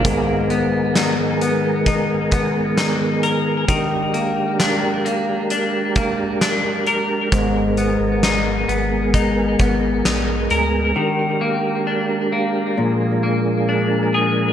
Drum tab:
HH |xxxxxxxx|xxxxxxxx|xxxxxxxx|--------|
SD |--o---o-|--o---o-|--o---o-|--------|
BD |o---oo--|o----o--|o---oo--|--------|